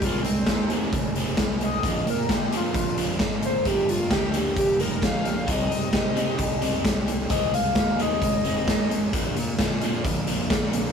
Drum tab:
HH |xxxxxxxx|xxxxxxxx|xxxxxxxx|xxxxxxxx|
SD |--o---o-|--o---o-|--o---o-|--o---o-|
BD |o-o-o-o-|o-o-o-o-|o-o-o-o-|o-o-o-o-|

HH |xxxxxxxx|xxxxxxxx|
SD |--o---o-|--o---o-|
BD |o-o-o-o-|o-o-o-o-|